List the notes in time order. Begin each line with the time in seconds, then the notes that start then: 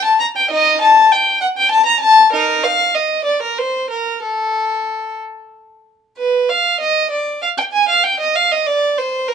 0.05 A5
0.20 A#5
0.37 G5
0.51 D#4 D#5
0.81 A5
1.12 G5
1.41 F#5
1.58 G5
1.71 A5
1.86 A#5
2.00 A5
2.32 D#4 A#4
2.64 F5
2.94 D#5
3.24 D5
3.42 A#4
3.58 C5
3.90 A#4
4.22 A4
6.18 B4
6.49 F5
6.80 D#5
7.10 D5
7.42 F5
7.58 G5
7.73 G#5
7.89 F5
8.04 G5
8.20 D#5
8.36 F5
8.52 D#5
8.67 D5
8.98 C5
9.28 A#4